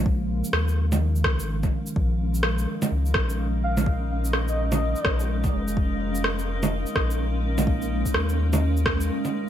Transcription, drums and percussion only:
0.06 kick loud
0.44 shaker medium
0.53 cross-stick loud
0.68 shaker soft
0.92 low bongo medium
0.92 shaker medium
1.16 shaker soft
1.24 kick loud
1.24 cross-stick loud
1.40 shaker medium
1.63 kick loud
1.63 low bongo soft
1.63 shaker soft
1.86 shaker soft
1.96 kick loud
2.34 shaker soft
2.43 cross-stick loud
2.58 shaker soft
2.82 low bongo medium
2.82 shaker medium
3.06 shaker soft
3.14 kick loud
3.14 cross-stick loud
3.29 shaker medium
3.77 low bongo medium
3.77 shaker soft
3.86 kick loud
4.25 shaker soft
4.33 cross-stick medium
4.48 shaker soft
4.72 low bongo medium
4.72 shaker medium
4.96 shaker soft
5.05 kick loud
5.05 cross-stick loud
5.20 shaker soft
5.44 kick loud
5.44 low bongo soft
5.44 shaker soft
5.68 shaker soft
5.77 kick loud
6.15 shaker medium
6.24 cross-stick loud
6.39 shaker soft
6.63 low bongo medium
6.63 shaker medium
6.86 shaker soft
6.96 kick loud
6.96 cross-stick medium
7.11 shaker medium
7.58 low bongo medium
7.58 shaker medium
7.67 kick loud
7.82 shaker soft
8.06 kick medium
8.06 shaker medium
8.14 cross-stick medium
8.29 shaker soft
8.53 low bongo medium
8.53 shaker medium
8.77 shaker soft
8.86 kick loud
8.86 cross-stick loud
9.01 shaker medium
9.25 low bongo soft
9.25 shaker soft

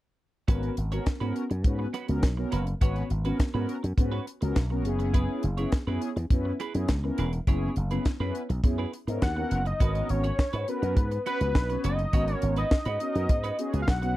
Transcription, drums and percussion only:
0.48 kick medium
0.48 closed hi-hat medium
0.63 closed hi-hat soft
0.77 closed hi-hat medium
0.92 closed hi-hat soft
1.06 kick loud
1.06 snare loud
1.06 closed hi-hat medium
1.21 closed hi-hat soft
1.36 closed hi-hat medium
1.51 closed hi-hat soft
1.64 kick loud
1.64 closed hi-hat medium
1.94 closed hi-hat medium
2.08 closed hi-hat medium
2.23 kick loud
2.23 snare loud
2.23 closed hi-hat medium
2.52 closed hi-hat medium
2.67 closed hi-hat soft
2.81 kick medium
2.81 closed hi-hat medium
2.96 closed hi-hat soft
3.10 closed hi-hat medium
3.25 closed hi-hat soft
3.40 kick loud
3.40 snare loud
3.40 closed hi-hat medium
3.69 closed hi-hat medium
3.84 closed hi-hat medium
3.98 kick loud
3.98 closed hi-hat medium
4.27 closed hi-hat medium
4.42 closed hi-hat medium
4.56 kick loud
4.56 snare loud
4.56 closed hi-hat medium
4.85 closed hi-hat medium
5.00 closed hi-hat soft
5.14 kick medium
5.14 closed hi-hat medium
5.43 closed hi-hat medium
5.58 closed hi-hat soft
5.72 kick loud
5.72 snare loud
5.72 closed hi-hat medium
6.02 closed hi-hat medium
6.17 closed hi-hat soft
6.30 kick loud
6.30 closed hi-hat medium
6.60 closed hi-hat medium
6.75 closed hi-hat medium
6.88 kick loud
6.88 snare loud
6.88 closed hi-hat medium
7.18 closed hi-hat medium
7.33 closed hi-hat soft
7.47 kick medium
7.47 closed hi-hat medium
7.76 closed hi-hat medium
7.91 closed hi-hat soft
8.05 kick loud
8.05 snare loud
8.05 closed hi-hat medium
8.35 closed hi-hat medium
8.50 closed hi-hat medium
8.64 kick loud
8.64 closed hi-hat medium
8.93 closed hi-hat medium
9.08 closed hi-hat medium
9.22 kick loud
9.22 snare loud
9.22 closed hi-hat medium
9.51 closed hi-hat medium
9.66 closed hi-hat soft
9.80 kick loud
9.80 closed hi-hat medium
9.95 closed hi-hat soft
10.09 closed hi-hat medium
10.24 closed hi-hat soft
10.39 kick loud
10.39 snare loud
10.53 closed hi-hat medium
10.68 closed hi-hat medium
10.83 closed hi-hat medium
10.97 kick loud
10.97 closed hi-hat medium
11.11 closed hi-hat medium
11.26 closed hi-hat medium
11.41 closed hi-hat medium
11.55 kick loud
11.55 snare loud
11.70 closed hi-hat soft
11.84 closed hi-hat medium
11.99 closed hi-hat soft
12.13 kick loud
12.13 closed hi-hat medium
12.28 closed hi-hat soft
12.42 closed hi-hat medium
12.56 closed hi-hat soft
12.71 kick loud
12.71 snare loud
12.85 closed hi-hat soft
13.00 closed hi-hat medium
13.15 closed hi-hat medium
13.29 kick loud
13.29 closed hi-hat medium
13.44 closed hi-hat medium
13.59 closed hi-hat medium
13.74 closed hi-hat medium
13.88 kick loud
13.88 snare loud
14.03 closed hi-hat soft

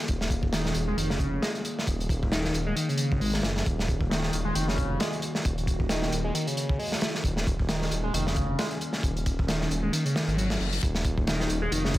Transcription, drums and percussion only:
0.08 kick loud
0.08 closed hi-hat medium
0.21 snare medium
0.30 kick medium
0.30 closed hi-hat medium
0.43 kick medium
0.53 snare loud
0.53 closed hi-hat medium
0.66 snare medium
0.75 closed hi-hat medium
0.98 closed hi-hat medium
1.10 snare soft
1.19 kick loud
1.19 closed hi-hat medium
1.43 snare loud
1.43 closed hi-hat medium
1.55 closed hi-hat soft
1.65 closed hi-hat medium
1.79 snare soft
1.87 kick loud
1.87 closed hi-hat medium
2.00 closed hi-hat soft
2.09 kick loud
2.09 closed hi-hat medium
2.23 kick loud
2.32 snare loud
2.32 closed hi-hat medium
2.44 snare medium
2.54 closed hi-hat medium
2.77 closed hi-hat medium
2.89 closed hi-hat soft
2.98 closed hi-hat medium
3.12 kick medium
3.21 open hi-hat medium
3.34 snare soft
3.43 snare loud
3.43 closed hi-hat medium
3.57 snare soft
3.66 kick loud
3.66 closed hi-hat medium
3.79 snare soft
3.88 kick loud
3.88 closed hi-hat medium
4.01 kick medium
4.11 snare loud
4.11 closed hi-hat medium
4.23 snare medium
4.33 closed hi-hat medium
4.55 closed hi-hat medium
4.68 snare soft
4.78 kick loud
4.78 closed hi-hat medium
5.00 snare loud
5.00 closed hi-hat medium
5.13 closed hi-hat soft
5.22 closed hi-hat medium
5.35 snare soft
5.45 kick loud
5.45 closed hi-hat medium
5.58 closed hi-hat soft
5.67 kick loud
5.67 closed hi-hat medium
5.80 kick medium
5.89 snare loud
5.89 closed hi-hat medium
6.02 snare soft
6.12 closed hi-hat medium
6.35 closed hi-hat medium
6.47 closed hi-hat soft
6.57 closed hi-hat medium
6.69 kick medium
6.80 open hi-hat medium
6.92 snare soft
7.01 snare loud
7.01 closed hi-hat medium
7.15 snare soft
7.24 kick loud
7.24 closed hi-hat medium
7.37 snare soft
7.47 kick loud
7.47 closed hi-hat medium
7.59 kick medium
7.69 snare loud
7.69 closed hi-hat loud
7.82 snare medium
7.91 closed hi-hat medium
8.14 closed hi-hat medium
8.27 snare soft
8.36 kick medium
8.36 closed hi-hat medium
8.59 snare loud
8.59 closed hi-hat medium
8.71 closed hi-hat soft
8.81 closed hi-hat medium
8.93 snare soft
9.03 kick loud
9.03 closed hi-hat medium
9.17 closed hi-hat soft
9.26 kick medium
9.26 closed hi-hat medium
9.39 kick loud
9.48 snare loud
9.48 closed hi-hat medium
9.61 snare soft
9.71 closed hi-hat medium
9.93 closed hi-hat medium
10.06 closed hi-hat soft
10.16 snare loud
10.16 closed hi-hat medium
10.29 closed hi-hat soft
10.38 closed hi-hat medium
10.50 snare loud
10.50 closed hi-hat medium
10.61 closed hi-hat soft
10.73 closed hi-hat medium
10.83 kick loud
10.83 closed hi-hat medium
10.95 snare soft
11.04 kick medium
11.04 closed hi-hat medium
11.18 kick medium
11.27 snare loud
11.27 closed hi-hat medium
11.40 snare medium
11.50 closed hi-hat medium
11.72 closed hi-hat medium
11.85 snare soft
11.94 kick loud
11.94 closed hi-hat medium

